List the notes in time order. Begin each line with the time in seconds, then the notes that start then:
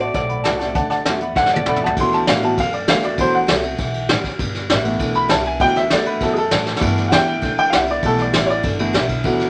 Already playing: A1
0.00 B3 F#4 D5 F#5 A5
0.14 B1 A2 D5 F#5 A5, kick, snare, closed hi-hat
0.29 D5 F#5 B5, closed hi-hat
0.44 C2 D3 A3 B3 F#4 D5 F#5 A5, snare, closed hi-hat
0.59 B3 F#4 D5 F#5 A5, snare, closed hi-hat
0.75 D2 D3 D5 F#5 A5, kick, closed hi-hat
0.90 D5 F#5 A5, snare, closed hi-hat
1.05 E2 D3 A3 B3 F#4 D5 F#5 A5, snare, closed hi-hat
1.21 B3 F#4 D5 F#5 B5, closed hi-hat
1.36 F#2 A2 D5 F#5 A5, kick, snare
1.46 snare
1.53 D5 F#5 A5, high tom
1.66 E2 D3 A3 B3 F#4 D5 F#5 B5, mid tom
1.76 mid tom
1.81 B3 F#4 D5 F#5 A5
1.86 floor tom
1.97 D2 D3 E3 F#3 B3 C6, kick, ride
2.12 A5, snare, ride
2.27 A2 D3 A3 B3 F#4 F5, snare, ride
2.42 E3 F#3 B3 F#4 A5, ride
2.58 F#2 A2 F5, kick, snare, ride
2.73 D5, ride
2.88 E2 D3 A3 B3 F#4 F5, snare, ride
3.03 B3 F#4 D5, snare, ride
3.18 D2 D3 E3 F#3 B3 C5, kick, ride
3.33 F#5, ride
3.47 C2 D3 A3 B3 F#4, snare, ride
3.63 B3 F#4, ride
3.78 B1 E3, kick, snare, ride
3.94 ride
4.09 A1 F#3, snare, ride
4.24 kick, snare, ride
4.39 G1 G3, kick, ride
4.55 snare, ride
4.70 A1 G3 B3 E4, snare, ride
4.84 E3 A3 B3 E4, ride
4.99 B1 D3, kick, ride
5.14 B5, ride
5.29 C2 G3 B3 E4 A5, snare, ride
5.44 B3 E4 G#5, ride
5.60 D2 D3 E3 F#3 B3 G5, kick, ride
5.76 E5, snare, ride
5.90 E2 D3 A3 B3 F#4 D5, snare, ride
6.06 B4, ride
6.21 F#2 E3 F#3 B3 A4, kick, snare, ride
6.33 G#4, ride
6.38 A4
6.51 A2 F#3, snare, ride
6.66 snare
6.76 E3, snare
6.81 G2 G3 A3 B3, kick, ride
6.97 snare, ride
7.08 E2 G3 F#5, snare, ride
7.13 B3 E4 G5
7.26 B3 E4, ride
7.42 D2 D3, kick, snare, ride
7.58 G5, muted upright bass stroke, ride
7.70 C2 G3 B3 F5, snare, ride
7.75 E4 F#5
7.87 B3 E4 D5, ride
8.03 B1 E3 G3 A3 B3 A4, kick, ride
8.18 D5, snare, ride
8.33 A1 G3 B3 E4, snare, ride
8.46 E4 C#5, ride
8.50 B3 D5
8.63 G1 D3, kick, ride
8.79 E3 A3 B3, ride
8.93 B1 G3 B3 E4, snare, ride
9.09 B3 E4, kick, ride
9.24 D2 D3 E3 F#3 B3, kick, ride
9.39 snare, ride